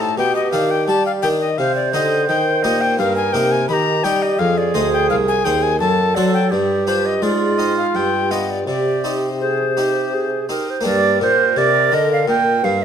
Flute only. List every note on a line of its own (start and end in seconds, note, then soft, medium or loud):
0.00 0.19 A4 medium
0.18 1.31 G4 medium
1.59 3.01 C5 medium
2.99 3.69 A#4 medium
3.70 4.41 G4 medium
4.39 5.80 G#4 medium
5.80 6.52 A4 medium
6.51 7.24 G4 medium
7.22 8.38 F4 medium
8.68 9.29 G4 soft
9.40 9.79 G#4 medium
9.77 10.15 G4 medium
10.14 10.49 G#4 soft
10.50 10.72 A#4 medium
10.70 10.86 C5 medium
10.86 11.19 D5 medium
11.22 11.59 C5 medium
11.58 11.96 D5 loud
11.94 12.11 D#5 medium
12.12 12.28 F5 medium
12.29 12.66 G5 medium
12.64 12.84 F5 medium